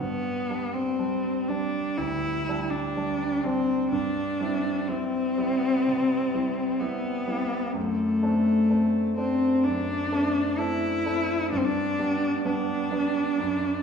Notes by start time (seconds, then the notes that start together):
0.00 G2 B3
0.50 G3 D4
0.73 C4
0.99 G3 D4
1.48 G3 D4
1.98 D2 E4
2.48 G3 D4
2.71 D4
2.97 G3 D4
3.44 G3 C4 D4
3.92 G2 D4
4.41 G3 C4 E4
4.88 G3 C4 E4
5.38 G3 C4 E4
5.87 C3
6.34 G3 C4 E4
6.80 G3 B3 C4 E4
7.28 G3 C4 E4
7.74 F#2 A3
8.22 A3 C4 D4
8.70 A3 C4 D4
9.17 A3 C4 D4
9.64 F#2 D4
10.12 A3 C4 D4
10.58 A3 C4 D4 E4
11.06 A3 C4 D4
11.52 G2 D4
11.59 C4
11.65 D4
11.99 G3 B3 D4
12.45 G3 B3 D4
12.91 G3 B3 D4
13.38 F#2